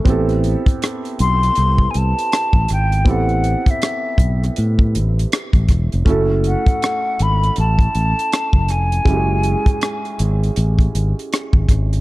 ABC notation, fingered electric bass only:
X:1
M:4/4
L:1/16
Q:"Swing 16ths" 1/4=80
K:Alyd
V:1 name="Fingered electric bass" clef=bass
A,,,3 z3 B,,,2 =C,,2 C,, z2 A,,, G,,,2 | A,,,3 z3 B,,,2 A,,2 A,,,2 z A,,, E,,, ^E,,, | F,,,3 z3 G,,,2 A,,,2 A,,, z2 F,,, ^E,,,2 | F,,,3 z3 G,,,2 A,,,2 G,,, z2 G,,, G,,,2 |]